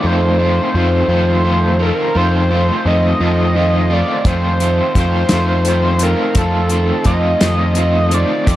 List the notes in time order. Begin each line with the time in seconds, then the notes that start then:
Already playing: C4 D#4 F4 C5
0.02 F2 D#3 A3 C4 F4
0.06 C5
0.39 D#3 A3 C4 F4
0.74 F2 D#3 A3 C4 F4 C5
1.08 F2 D#3 A3 C4 F4
1.44 D#3 A3 C4 F4
1.79 D#3 A3 C4 F4 A#4
1.86 A4
1.95 A#4
2.14 F2 D#3 A3 C4 F4 C5
2.51 D#3 A3 C4 F4
2.85 F2 D#3 A3 C4 F4 D#5
3.20 F2 D#3 A3 C4 F4
3.55 D#3 A3 C4 F4
3.90 D#3 A3 C4 F4 D5
4.25 F2 D#3 A3 C4 F4 C5, kick, closed hi-hat
4.60 D#3 A3 C4 F4, closed hi-hat
4.95 F2 D#3 A3 C4 F4, kick, closed hi-hat
5.00 C5
5.29 F2 D#3 A3 C4 F4, snare, closed hi-hat
5.65 D#3 A3 C4 F4, closed hi-hat
5.99 C4 F4 A#4, closed hi-hat
6.04 D#3 A3
6.35 F2 D#3 A3 C4 F4 A4, kick, closed hi-hat
6.69 D#3 A3 C4 F4, closed hi-hat
7.04 F2 D#3 A3 C4 F4 D#5, kick, closed hi-hat
7.41 F2 D#3 A3 C4 F4, snare, closed hi-hat
7.75 D#3 A3 C4 F4, closed hi-hat
8.11 D#3 A3 C4 F4 D5, closed hi-hat
8.47 F2 D#3 A3 C4 F4, kick, closed hi-hat